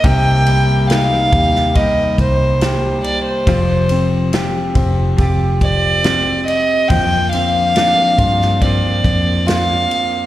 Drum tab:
RD |x-x-x-x-x-x-x-x-|x-x-x-x-x-x-x-x-|x-x-x-x-x-x-x-x-|
SD |----o--o----o---|----o-------o---|----o--o----o---|
BD |o-----o-o-o-----|o-----o-o-o-----|o-----o-o-o-----|